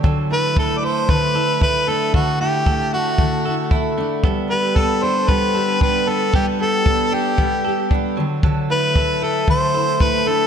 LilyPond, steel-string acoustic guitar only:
\new Staff \with { instrumentName = "Steel-string acoustic guitar" } { \time 4/4 \key g \major \tempo 4 = 114 d8 e'8 a8 a'8 d8 e'8 a8 d'8 | d8 e'8 a8 a'8 d8 e'8 a8 d'8 | g8 g'8 b8 a'8 g8 g'8 b8 d'8 | g8 g'8 b8 a'8 g8 g'8 b8 d8 |
d8 e'8 a8 a'8 d8 e'8 a8 d'8 | }